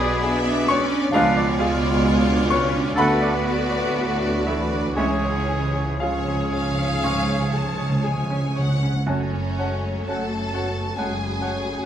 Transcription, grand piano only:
0.00 1.08 B1 loud
0.00 0.14 G#4 medium
0.00 0.65 B4 medium
0.00 0.70 C#5 medium
0.00 1.15 D5 medium
0.00 0.65 G#5 medium
0.00 0.65 B5 loud
0.00 0.68 C#6 loud
0.23 0.59 G#4 medium
0.47 0.82 D4 medium
0.68 1.05 B4 medium
0.68 1.11 C#5 medium
0.68 1.10 C#6 loud
0.92 1.14 D4 medium
1.14 2.94 C#2 medium
1.14 1.56 F4 medium
1.14 1.35 D5 medium
1.14 1.56 F5 loud
1.37 1.73 D5 medium
1.59 1.95 F4 medium
1.59 2.48 G#4 medium
1.59 2.47 F5 medium
1.59 2.47 G#5 medium
1.81 2.18 D5 medium
2.05 2.41 F4 medium
2.27 2.64 D4 medium
2.50 2.88 B4 medium
2.50 2.95 C#5 medium
2.50 2.94 C#6 loud
2.74 2.98 D4 medium
2.98 4.93 D2 medium
2.98 4.43 B4 medium
2.98 4.42 F#5 medium
2.98 4.42 B5 loud
3.22 3.61 D5 medium
3.46 3.85 F#4 medium
3.71 4.11 D5 medium
3.96 4.36 F#4 medium
4.21 4.61 D4 medium
4.47 4.94 E4 medium
4.47 4.88 A4 medium
4.47 4.94 E5 medium
4.73 4.97 D4 medium
4.98 7.00 C#2 medium
4.98 5.96 E4 medium
4.98 5.21 C#5 medium
4.98 5.96 E5 medium
5.23 5.63 C#5 medium
5.49 5.89 G#4 medium
5.74 6.01 C#5 medium
6.00 8.54 F4 medium
6.00 6.42 G#4 medium
6.00 6.51 C#5 soft
6.00 8.53 F5 medium
6.28 6.68 C#4 soft
6.52 6.94 C#5 medium
6.79 7.19 C#4 soft
7.04 7.44 G#2 medium
7.29 7.69 C#5 medium
7.53 7.95 G#4 medium
7.78 8.20 C#5 medium
8.04 8.46 G#4 medium
8.30 8.72 C#4 medium
8.56 8.97 C#5 medium
8.83 9.07 C#4 medium
9.06 9.56 F#2 medium
9.58 10.04 F#4 soft
9.58 10.05 C#5 medium
10.09 10.50 A3 soft
10.09 10.50 F#4 soft
10.09 10.50 C#5 soft
10.54 10.93 F#4 soft
10.54 10.93 C#5 medium
10.98 11.40 C#2 medium
11.42 11.81 F#4 soft
11.42 11.81 C#5 medium

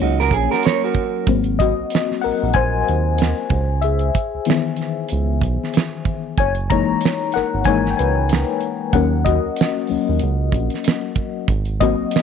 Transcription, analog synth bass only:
0.02 0.30 C#2 medium
0.32 0.48 A#1 loud
1.28 1.73 G#1 loud
1.80 1.84 A#1 soft
2.25 2.32 A#1 soft
2.43 2.84 A#1 medium
2.89 3.34 D#2 medium
3.51 4.11 C#2 loud
4.34 4.39 C#2 soft
5.12 5.40 C#2 loud
5.43 5.59 B1 loud
6.39 6.84 F#1 loud
6.90 6.95 G#1 soft
7.36 7.42 G#1 soft
7.54 7.94 G#1 medium
8.00 8.44 C#2 loud
8.94 9.40 D#2 loud
9.45 9.50 D#2 soft
9.91 9.98 D#2 soft
10.09 10.21 D#2 medium
10.23 10.51 C#2 medium
10.53 10.69 A#1 loud
11.49 11.95 G#1 loud
12.00 12.05 A#1 soft

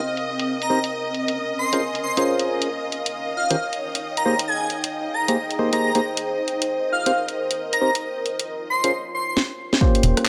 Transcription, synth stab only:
0.70 0.79 C4 medium
0.70 0.79 D#4 medium
0.70 0.79 G4 medium
0.70 0.79 A#4 medium
0.70 0.79 C5 medium
1.73 1.81 C#4 medium
1.73 1.81 F4 medium
1.73 1.81 G#4 medium
1.73 1.81 A#4 medium
1.73 1.81 C5 medium
2.17 2.69 C#4 medium
2.17 2.69 F4 medium
2.17 2.69 G#4 medium
2.17 2.69 A#4 medium
2.17 2.69 C5 medium
3.50 3.56 D#3 medium
3.50 3.56 C#4 medium
3.50 3.56 F4 medium
3.50 3.56 G4 medium
3.50 3.56 A#4 medium
3.50 3.56 C5 loud
4.25 4.34 A#3 medium
4.25 4.34 D#4 medium
4.25 4.34 G4 medium
4.25 4.34 G#4 medium
4.25 4.34 C5 medium
5.28 5.37 A#3 medium
5.28 5.37 D#4 medium
5.28 5.37 G4 medium
5.28 5.37 G#4 medium
5.28 5.37 C5 medium
5.59 5.71 A#3 medium
5.59 5.71 D#4 medium
5.59 5.71 G4 medium
5.59 5.71 G#4 medium
5.59 5.71 C5 medium
5.73 5.92 A#3 medium
5.73 5.92 D#4 medium
5.73 5.92 G4 medium
5.73 5.92 G#4 medium
5.73 5.92 C5 medium
5.95 6.00 A#3 loud
5.95 6.00 D#4 medium
5.95 6.00 G4 medium
5.95 6.00 G#4 medium
5.95 6.00 C5 loud
7.06 7.12 C4 medium
7.06 7.11 D#4 medium
7.06 7.12 G4 medium
7.06 7.11 A#4 medium
7.06 7.11 C5 loud
7.81 7.90 C4 medium
7.81 7.90 D#4 medium
7.81 7.90 G4 medium
7.81 7.90 A#4 medium
7.81 7.90 C5 medium
8.84 8.92 C#4 medium
8.84 8.92 F4 medium
8.84 8.92 G#4 medium
8.84 8.92 A#4 medium
8.84 8.92 C5 medium
9.81 10.29 A#3 loud
9.81 10.29 C#4 medium
9.81 10.29 F4 medium
9.81 10.29 G4 medium
9.81 10.29 C5 loud

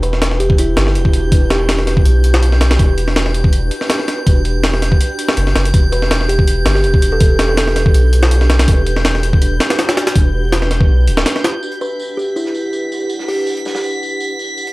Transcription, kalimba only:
0.03 0.31 B4 medium
0.40 0.57 G4 medium
0.59 0.81 E4 medium
1.50 2.02 G4 medium
5.92 6.20 B4 medium
6.29 6.45 G4 medium
6.75 6.97 G4 medium
7.12 7.47 A4 medium
7.49 7.54 A4 medium
7.57 7.64 A4 medium
11.81 12.09 B4 medium
12.17 12.34 G4 medium
12.36 12.59 E4 medium
13.28 13.80 G4 medium

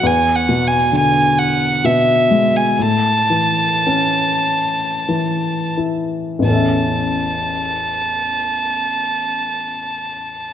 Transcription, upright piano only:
0.03 2.74 E2 soft
0.49 1.83 B2 soft
0.92 2.74 D3 soft
1.84 2.76 B2 soft
2.31 2.77 G#3 soft
2.79 6.42 A2 soft
3.30 5.07 E3 soft
3.87 6.42 C#4 soft
5.09 6.42 E3 soft
5.77 6.44 E4 soft
6.39 10.53 A1 soft
6.39 10.53 E2 soft
6.44 10.53 E3 soft
6.44 10.53 C#4 soft
6.50 10.53 A4 soft
6.50 10.53 E5 soft

